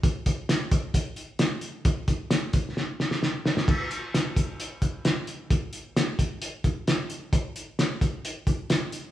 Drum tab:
CC |----------------|----------------|x---------------|----------------|
HH |x-x-x-x-x-x-x-x-|x-x-x-x---------|--x-x-x-x-x-x-x-|x-x-x-x-x-x-x-x-|
SD |----o-------o---|----o---o-ooo-oo|----o-------o---|----o-------o---|
BD |o-o---o-o-------|o-o---o---------|o-----o---o-----|o-----o---o-----|

CC |----------------|
HH |x-x-x-x-x-x-x-x-|
SD |----o-------o---|
BD |o-----o---o-----|